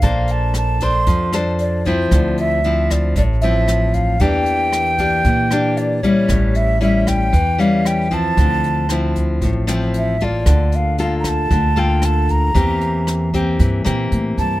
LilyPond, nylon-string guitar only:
\new Staff \with { instrumentName = "Nylon-string guitar" } { \time 4/4 \key d \minor \tempo 4 = 115 << { <d' a' c''>4. <d' a' c''>4 <d' a' c''>4 <f c' e'>8~ | <f c' e'>4 <f c' e'>4 r8 <f c' e'>4. | <bes d' g'>4. <bes d' g'>4 <bes d' g'>4 <g cis' e'>8~ | <g cis' e'>4 <g cis' e'>4 r8 <g cis' e'>4 <f c' e'>8~ |
<f c' e'>4 <f c' e'>4. <f c' e'>4 <bes f' a'>8~ | <bes f' a'>4 <bes f' a'>4. <bes f' a'>4. | <bes c' g'>4. <bes c' g'>4 <bes c' g'>4. | } \\ { bes2 f2 | d2 a,2 | e2 e2 | a,2 e2 |
d2 a,2 | d2 d2 | e2 e2 | } >> }